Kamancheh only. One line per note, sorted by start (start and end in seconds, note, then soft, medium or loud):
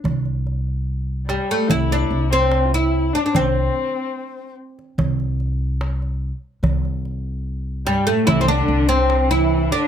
1.28 1.70 G3 medium
1.69 2.32 E4 medium
2.30 2.67 C4 medium
2.65 2.74 F4 medium
2.72 3.15 E4 medium
3.13 3.34 D4 medium
3.34 4.54 C4 medium
7.86 8.09 G3 medium
8.08 8.26 A3 medium
8.27 8.47 E4 medium
8.48 8.91 D4 medium
8.90 9.32 C4 medium
9.31 9.73 E4 medium
9.71 9.88 D4 medium